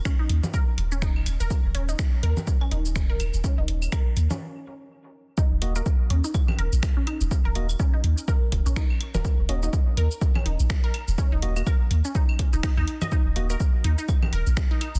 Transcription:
0.05 synth pluck C#4, finger snap, kick, cabasa
0.19 synth pluck D#4
0.29 sub bass D#2, closed hi-hat
0.43 low conga, cabasa
0.54 synth pluck A#4, kick, cabasa
0.78 sub bass D#1, closed hi-hat
0.92 synth pluck C#4, cabasa
1.02 synth pluck D#4, finger snap, kick, cabasa
1.16 sub bass F1, claves
1.26 sub bass D#1, closed hi-hat, cabasa, claves
1.40 sub bass D#1, synth pluck A#4, cabasa
1.50 kick, cabasa
1.65 sub bass D#1
1.75 sub bass D#1, synth pluck C#4, closed hi-hat
1.89 synth pluck D#4, cabasa
1.99 finger snap, kick, cabasa
2.23 sub bass D#2, synth pluck A#4, closed hi-hat
2.37 low conga, cabasa
2.47 kick, cabasa
2.61 synth pluck C#4, claves
2.71 sub bass D#1, synth pluck D#4, closed hi-hat
2.85 cabasa
2.96 finger snap, kick, cabasa
3.10 sub bass F1, synth pluck A#4
3.20 sub bass D#1, closed hi-hat, cabasa, claves
3.34 sub bass D#1, cabasa
3.44 synth pluck C#4, kick, cabasa
3.58 sub bass D#1, synth pluck D#4
3.68 sub bass D#1, closed hi-hat
3.82 cabasa, claves
3.92 synth pluck A#4, finger snap, kick, cabasa, claves
4.17 sub bass D#2, closed hi-hat, cabasa
4.31 synth pluck C#4, low conga, cabasa
5.38 synth pluck D#4, kick, cabasa
5.52 sub bass D#1
5.62 sub bass D#1, synth stab A#3 F#4 D#5, closed hi-hat
5.76 synth stab A#3 F#4 D#5, synth pluck A#4, cabasa
5.86 kick, cabasa
6.10 sub bass D#2, synth pluck C#4, closed hi-hat
6.24 synth pluck D#4, cabasa
6.34 kick, cabasa, claves
6.48 low conga, claves
6.58 sub bass D#1, synth pluck A#4, closed hi-hat
6.72 sub bass A#1, cabasa
6.83 finger snap, kick, cabasa
6.97 synth pluck C#4
7.07 synth pluck D#4, closed hi-hat, claves
7.21 sub bass D#1, cabasa
7.31 kick, cabasa
7.45 sub bass D#1, synth pluck A#4
7.55 sub bass D#1, synth stab A#3 F#4 D#5, closed hi-hat
7.69 cabasa, claves
7.80 synth pluck C#4, kick, cabasa
7.94 synth pluck D#4
8.04 sub bass D#2, closed hi-hat
8.18 cabasa
8.28 synth pluck A#4, kick, cabasa
8.52 sub bass D#1, kick, closed hi-hat
8.66 sub bass A#1, synth pluck C#4, cabasa
8.76 synth pluck D#4, finger snap, kick, cabasa
8.90 claves
9.01 closed hi-hat, claves
9.14 sub bass D#1, synth pluck A#4, low conga, cabasa
9.25 kick, cabasa
9.39 sub bass D#1
9.49 sub bass D#1, synth stab A#3 F#4 D#5, synth pluck C#4, closed hi-hat
9.63 synth stab A#3 F#4 D#5, synth pluck D#4, cabasa
9.73 kick, cabasa
9.97 sub bass D#2, synth pluck A#4, closed hi-hat
10.11 cabasa
10.21 kick, cabasa
10.35 synth pluck C#4, low conga, claves
10.46 sub bass D#1, synth pluck D#4, closed hi-hat
10.60 sub bass A#1, cabasa
10.70 finger snap, kick, cabasa
10.84 synth pluck A#4
10.94 closed hi-hat, claves
11.08 sub bass D#1, cabasa
11.18 synth pluck C#4, kick, cabasa
11.32 sub bass D#1, synth pluck D#4
11.42 sub bass D#1, synth stab A#3 F#4 D#5, closed hi-hat
11.56 synth stab A#3 F#4 D#5, cabasa, claves
11.67 synth pluck A#4, kick, cabasa, claves
11.91 sub bass D#2, closed hi-hat
12.05 synth pluck C#4, cabasa
12.15 synth pluck D#4, kick, cabasa
12.29 claves
12.39 kick, closed hi-hat
12.53 sub bass D#1, synth pluck D#4, cabasa
12.63 synth pluck D#4, finger snap, kick, cabasa
12.77 sub bass D#2, synth pluck D#4, claves
12.88 closed hi-hat
13.01 synth pluck D#5, low conga, cabasa, claves
13.12 synth pluck D#4, kick, cabasa
13.26 sub bass D#1
13.36 sub bass D#1, synth stab A#3 F#4 D#5, closed hi-hat
13.50 synth stab A#3 F#4 D#5, synth pluck A#4, cabasa
13.60 kick, cabasa
13.84 sub bass D#2, synth pluck D#4, closed hi-hat
13.98 synth pluck D#4, cabasa
14.09 kick, cabasa, claves
14.23 low conga, claves
14.33 sub bass D#1, synth pluck A#4, closed hi-hat
14.47 sub bass A#1, cabasa
14.57 finger snap, kick, cabasa
14.71 synth pluck D#4
14.81 synth pluck D#4, closed hi-hat, claves
14.95 sub bass D#1, cabasa

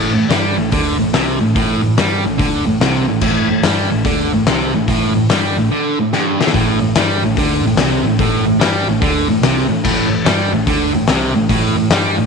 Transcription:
Already playing: picked electric bass A1, distorted electric guitar A2
0.15 picked electric bass A1, distorted electric guitar A2
0.29 picked electric bass G2, distorted electric guitar G3, snare, open hi-hat
0.57 picked electric bass A1, distorted electric guitar A2
0.72 picked electric bass D2, distorted electric guitar D3, kick, open hi-hat
0.99 picked electric bass A1, distorted electric guitar A2
1.13 picked electric bass C2, distorted electric guitar C3, snare, open hi-hat
1.40 picked electric bass A1, distorted electric guitar A2
1.55 picked electric bass A1, distorted electric guitar A2, kick, open hi-hat
1.83 picked electric bass A1, distorted electric guitar A2
1.98 picked electric bass G2, distorted electric guitar G3, snare, open hi-hat
2.24 picked electric bass A1, distorted electric guitar A2
2.38 picked electric bass D2, distorted electric guitar D3, kick, open hi-hat
2.66 picked electric bass A1, distorted electric guitar A2
2.81 picked electric bass C2, distorted electric guitar C3, snare, open hi-hat
2.96 snare
3.08 picked electric bass A1, distorted electric guitar A2
3.21 picked electric bass A1, distorted electric guitar A2, kick, crash
3.50 picked electric bass A1, distorted electric guitar A2
3.63 picked electric bass G2, distorted electric guitar G3, snare, open hi-hat
3.89 picked electric bass A1, distorted electric guitar A2
4.05 picked electric bass D2, distorted electric guitar D3, kick, open hi-hat
4.32 picked electric bass A1, distorted electric guitar A2
4.46 picked electric bass C2, distorted electric guitar C3, snare, open hi-hat
4.60 snare
4.74 picked electric bass A1, distorted electric guitar A2
4.88 picked electric bass A1, distorted electric guitar A2, kick, open hi-hat
5.15 picked electric bass A1, distorted electric guitar A2
5.29 picked electric bass G2, distorted electric guitar G3, snare, open hi-hat
5.57 picked electric bass A1, distorted electric guitar A2
5.71 distorted electric guitar D3
6.00 distorted electric guitar A2
6.13 distorted electric guitar G2, snare
6.39 distorted electric guitar D3, snare
6.47 snare
6.54 picked electric bass A1, distorted electric guitar A2, kick, open hi-hat
6.81 picked electric bass A1, distorted electric guitar A2
6.95 picked electric bass G2, distorted electric guitar G3, snare, open hi-hat
7.22 picked electric bass A1, distorted electric guitar A2
7.37 picked electric bass D2, distorted electric guitar D3, kick, open hi-hat
7.61 picked electric bass A1
7.66 distorted electric guitar A2
7.76 picked electric bass C2, snare, open hi-hat
7.80 distorted electric guitar C3
7.92 snare
8.03 picked electric bass A1, distorted electric guitar A2
8.19 picked electric bass A1, distorted electric guitar A2, kick, open hi-hat
8.46 picked electric bass A1, distorted electric guitar A2
8.60 picked electric bass G2, distorted electric guitar G3, snare, open hi-hat
8.87 picked electric bass A1, distorted electric guitar A2
9.02 picked electric bass D2, distorted electric guitar D3, kick, open hi-hat
9.29 picked electric bass A1, distorted electric guitar A2
9.42 picked electric bass C2, distorted electric guitar C3, snare, open hi-hat
9.58 snare
9.69 picked electric bass A1, distorted electric guitar A2
9.84 picked electric bass A1, distorted electric guitar A2, kick, crash
10.10 picked electric bass A1, distorted electric guitar A2
10.25 picked electric bass G2, distorted electric guitar G3, snare, open hi-hat
10.52 picked electric bass A1, distorted electric guitar A2
10.67 picked electric bass D2, distorted electric guitar D3, kick, open hi-hat
10.94 picked electric bass A1, distorted electric guitar A2
11.07 picked electric bass C2, distorted electric guitar C3, snare, open hi-hat
11.35 picked electric bass A1, distorted electric guitar A2
11.49 picked electric bass A1, distorted electric guitar A2, kick, open hi-hat
11.76 picked electric bass A1, distorted electric guitar A2
11.90 picked electric bass G2, distorted electric guitar G3, snare, open hi-hat
12.16 picked electric bass A1, distorted electric guitar A2

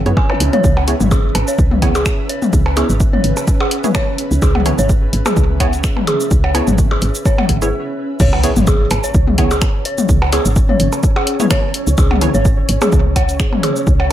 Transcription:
Already playing: ambient pad C#4 B4 E5
0.06 fm bass F#2, synth stab B3 E4 G#4 C#5, closed hi-hat
0.17 synth bell G#5, kick, percussion blips
0.30 synth bell C#5, percussion blips, zap
0.40 fm bass C#2, closed hi-hat
0.53 synth bell C#5, closed hi-hat, high tom
0.64 fm bass C#2, synth bell C#5, kick, shaker
0.77 percussion blips
0.88 synth stab B3 E4 G#4 C#5, closed hi-hat, shaker
1.00 fm bass G#1, high tom, shaker
1.11 synth bell G#4, kick, percussion blips, shaker
1.35 fm bass G#1, closed hi-hat, percussion blips
1.48 synth bell C#5, shaker
1.58 fm bass C#2, kick, shaker
1.71 high tom
1.82 synth stab B3 E4 G#4 C#5, kick, closed hi-hat, percussion blips
1.95 synth bell G#4, closed hi-hat, percussion blips, shaker
2.06 finger snap, kick, percussion blips, shaker
2.29 synth bell C#5, closed hi-hat
2.42 high tom, shaker
2.53 fm bass C#2, kick, shaker
2.66 percussion blips
2.77 synth stab B3 E4 G#4 C#5, synth bell G#4, closed hi-hat, percussion blips, shaker
2.89 fm bass G#1, shaker
3.00 kick, shaker
3.13 synth bell C#5, high tom
3.24 fm bass G#1, closed hi-hat
3.37 percussion blips, shaker
3.48 kick, shaker
3.60 synth bell G#4, percussion blips
3.71 closed hi-hat
3.84 synth stab B3 E4 G#4 C#5, closed hi-hat, high tom, shaker
3.95 synth bell C#5, finger snap, kick, percussion blips, shaker
4.18 closed hi-hat
4.31 fm bass C#2, shaker
4.42 fm bass C#2, synth bell G#4, kick, percussion blips, shaker
4.55 high tom, percussion blips
4.66 synth stab B3 E4 G#4 C#5, closed hi-hat, percussion blips, shaker
4.79 fm bass G#1, synth bell C#5, shaker
4.89 kick, shaker
5.13 fm bass G#1, closed hi-hat
5.26 synth bell G#4, high tom, percussion blips, shaker
5.37 fm bass C#2, kick, shaker
5.60 synth stab B3 E4 G#4 C#5, synth bell C#5, kick, closed hi-hat, percussion blips
5.73 closed hi-hat, shaker
5.84 finger snap, kick, shaker
5.97 high tom, percussion blips
6.07 synth bell G#4, closed hi-hat, percussion blips
6.20 shaker
6.31 fm bass C#2, kick, shaker
6.44 synth bell C#5, percussion blips
6.55 synth stab B3 E4 G#4 C#5, closed hi-hat, percussion blips, shaker
6.67 fm bass G#1, high tom, shaker
6.78 kick, shaker
6.91 synth bell G#4, percussion blips
7.02 fm bass G#1, closed hi-hat, shaker
7.15 shaker
7.25 synth bell C#5, kick, percussion blips, shaker
7.38 high tom, percussion blips
7.49 fm bass G#1, kick, closed hi-hat
7.62 synth stab B3 E4 G#4 C#5, synth bell G#4, closed hi-hat, shaker
8.20 fm bass C#2, ambient pad C#4, synth texture C#5, synth bell C#5, kick, crash, impact, shaker
8.33 percussion blips
8.44 synth stab B3 E4 G#4 C#5, closed hi-hat, shaker
8.56 fm bass G#1, high tom, shaker
8.67 synth bell G#4, kick, percussion blips, shaker
8.91 fm bass G#1, closed hi-hat, percussion blips, shaker
9.04 synth bell C#5, shaker
9.14 fm bass C#2, kick, shaker
9.27 high tom
9.38 synth stab B3 E4 G#4 C#5, kick, closed hi-hat, percussion blips
9.51 synth bell G#4, closed hi-hat, percussion blips, shaker
9.62 finger snap, kick, percussion blips, shaker
9.85 synth bell C#5, closed hi-hat
9.98 high tom, shaker
10.09 fm bass C#2, kick, shaker
10.22 percussion blips
10.32 synth stab B3 E4 G#4 C#5, synth bell G#4, closed hi-hat, percussion blips, shaker
10.45 fm bass G#1, shaker
10.56 kick, shaker
10.69 synth bell C#5, high tom
10.80 fm bass G#1, closed hi-hat, shaker
10.93 percussion blips, shaker
11.03 kick, shaker
11.16 synth bell G#4, percussion blips
11.27 closed hi-hat
11.40 synth stab B3 E4 G#4 C#5, closed hi-hat, high tom, shaker
11.51 synth bell C#5, finger snap, kick, percussion blips, shaker
11.74 closed hi-hat
11.87 fm bass C#2, shaker
11.98 fm bass C#2, synth bell G#4, kick, percussion blips, shaker
12.11 high tom, percussion blips
12.21 synth stab B3 E4 G#4 C#5, closed hi-hat, percussion blips, shaker
12.34 fm bass G#1, synth bell C#5, shaker
12.45 kick, shaker
12.69 fm bass G#1, closed hi-hat, shaker
12.82 synth bell G#4, high tom, percussion blips, shaker
12.92 fm bass C#2, kick, shaker
13.16 synth bell C#5, kick, closed hi-hat, percussion blips
13.29 closed hi-hat, shaker
13.40 finger snap, kick, shaker
13.53 high tom, percussion blips
13.63 synth bell G#4, closed hi-hat, percussion blips
13.76 shaker
13.87 fm bass C#2, kick, shaker
14.00 synth bell C#5, percussion blips

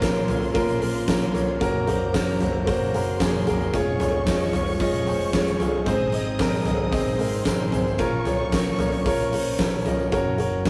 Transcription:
Already playing: fingered electric bass A#1, grand piano A#2 A#4 C#5, analog synth pad F3 A#3 C#4, violin section C5 C6
0.00 grand piano A#3 C#4 F4 A#4, kick, snare, hi-hat pedal, open hi-hat, tambourine
0.16 tambourine
0.28 grand piano A#3 C#4 F4 C#5, floor tom, hi-hat pedal, open hi-hat, tambourine
0.42 open hi-hat
0.54 grand piano A#3 C#4 F4 A#4, kick, hi-hat pedal, open hi-hat, tambourine
0.68 hi-hat pedal, tambourine
0.80 fingered electric bass A#1, grand piano A#3 C#4 F4 A#4, hi-hat pedal, open hi-hat, tambourine
0.95 open hi-hat
1.07 grand piano A#3 C#4 F4 A#4, kick, snare, hi-hat pedal, open hi-hat, tambourine
1.21 hi-hat pedal
1.33 grand piano A#3 C#4 F4 C#5, floor tom, hi-hat pedal, open hi-hat, tambourine
1.60 fingered electric bass F#1, analog synth pad F#3 A#3, grand piano A#3 C#4 F#4 A#4, violin section A#4 A#5, kick, hi-hat pedal, open hi-hat, tambourine
1.86 grand piano A#3 C#4 F#4 C5, floor tom, hi-hat pedal, open hi-hat, tambourine
2.13 grand piano A#3 C#4 F#4 A#4, kick, snare, hi-hat pedal, open hi-hat, tambourine
2.28 tambourine
2.40 grand piano A#3 C#4 F#4 C5, floor tom, hi-hat pedal, open hi-hat, tambourine
2.66 grand piano A#3 C#4 F#4 C5, kick, hi-hat pedal, open hi-hat, tambourine
2.82 tambourine
2.93 fingered electric bass F#1, grand piano A#3 C#4 F#4 A#4, violin section C5 C6, hi-hat pedal, open hi-hat, tambourine
3.19 grand piano A#3 C#4 F#4 G#4, kick, snare, hi-hat pedal, open hi-hat, tambourine
3.46 fingered electric bass F#1, grand piano A#3 C#4 F#4 A#4, floor tom, hi-hat pedal, open hi-hat, tambourine
3.61 tambourine
3.73 fingered electric bass F1, analog synth pad F3 G#3 C#4, grand piano C#4 F4 G#4 C#5, violin section C#5 C#6, kick, hi-hat pedal, open hi-hat, tambourine
3.99 grand piano C#4 F4 G#4 C#5, floor tom, hi-hat pedal, open hi-hat, tambourine
4.26 grand piano C#4 F4 G#4 D#5, kick, snare, hi-hat pedal, open hi-hat, tambourine
4.40 tambourine
4.53 grand piano C#4 F4 G#4 C#5, floor tom, hi-hat pedal, open hi-hat, tambourine
4.66 open hi-hat
4.80 grand piano C#4 F4 G#4 D#5, kick, hi-hat pedal, open hi-hat, tambourine
4.94 hi-hat pedal, tambourine
5.06 fingered electric bass F1, grand piano C#4 F4 G#4 C5, hi-hat pedal, open hi-hat, tambourine
5.20 open hi-hat
5.33 grand piano C#4 F4 G#4 C#5, kick, snare, hi-hat pedal, open hi-hat, tambourine
5.47 hi-hat pedal
5.60 grand piano C#4 F4 G#4 C#5, floor tom, hi-hat pedal, open hi-hat, tambourine
5.86 fingered electric bass G#1, grand piano G#2 C4 D#4 G#4 C5, analog synth pad D#3 C4, violin section D#5 D#6, kick, hi-hat pedal, open hi-hat, tambourine
6.12 grand piano C4 D#4 G#4 D#5, hi-hat pedal, open hi-hat, tambourine
6.39 grand piano C4 D#4 G#4 A#4, kick, snare, hi-hat pedal, open hi-hat, tambourine
6.54 tambourine
6.65 grand piano C4 D#4 G#4 D#5, floor tom, hi-hat pedal, open hi-hat, tambourine
6.92 grand piano C4 D#4 G#4 D#5, kick, hi-hat pedal, open hi-hat, tambourine
7.08 tambourine
7.18 fingered electric bass G#1, grand piano C4 D#4 G#4 A#4, violin section C5 C6, hi-hat pedal, open hi-hat, tambourine
7.34 tambourine
7.44 grand piano C4 D#4 G#4 A#4, kick, snare, hi-hat pedal, open hi-hat, tambourine
7.71 fingered electric bass G#1, grand piano C4 D#4 G#4 C5, floor tom, hi-hat pedal, open hi-hat, tambourine
7.88 tambourine
7.98 fingered electric bass A#1, grand piano A#2 C#4 F4 A#4 C#5, analog synth pad F3 A#3 C#4, violin section C#5 C#6, kick, hi-hat pedal, open hi-hat, tambourine
8.25 grand piano C#4 F4 A#4 C#5, floor tom, hi-hat pedal, open hi-hat, tambourine
8.52 grand piano C#4 F4 A#4 C#5, kick, snare, hi-hat pedal, open hi-hat, tambourine
8.66 tambourine
8.78 grand piano C#4 F4 A#4 C#5, floor tom, hi-hat pedal, open hi-hat, tambourine
8.92 open hi-hat
9.05 grand piano C#4 F4 A#4 C#5, kick, hi-hat pedal, open hi-hat, tambourine
9.19 hi-hat pedal, tambourine
9.32 fingered electric bass A#1, grand piano C#4 F4 A#4 C5, hi-hat pedal, open hi-hat, tambourine
9.45 tambourine
9.58 grand piano C#4 F4 A#4 C#5, kick, snare, hi-hat pedal, open hi-hat, tambourine
9.85 grand piano C#4 F4 A#4 D#5, floor tom, hi-hat pedal, open hi-hat, tambourine
9.99 tambourine
10.11 fingered electric bass F#1, analog synth pad F#3 A#3, grand piano C#4 F#4 A#4 C#5, kick, hi-hat pedal, open hi-hat
10.38 grand piano C#4 F#4 A#4 C#5, hi-hat pedal, open hi-hat
10.64 grand piano C#4 F#4 A#4 C#5, kick, snare, hi-hat pedal, open hi-hat

